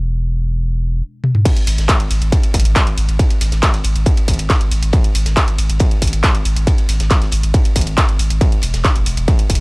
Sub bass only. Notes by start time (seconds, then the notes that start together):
Already playing: E1
1.67 G#1
1.78 G#1
2.00 G#1
2.11 G#1
2.22 G#1
2.54 G#1
2.65 G#1
2.87 G#1
2.98 G#1
3.09 G#1
3.41 G#1
3.52 G#1
3.74 G#1
3.85 G#1
3.96 G#1
4.28 G#1
4.39 G#1
4.61 G#1
4.71 G#1
4.83 G#1
5.15 G#1
5.26 G#1
5.48 G#1
5.58 G#1
5.70 G#1
6.02 G#1
6.13 G#1
6.35 G#1
6.45 G#1
6.56 G#1
6.89 G#1
7.00 G#1
7.22 G#1
7.32 G#1
7.43 G#1
7.76 G#1
7.87 G#1
8.09 G#1
8.19 G#1
8.30 G#1
8.63 E1
8.74 E1
8.96 E1
9.06 E1
9.17 E1
9.50 E1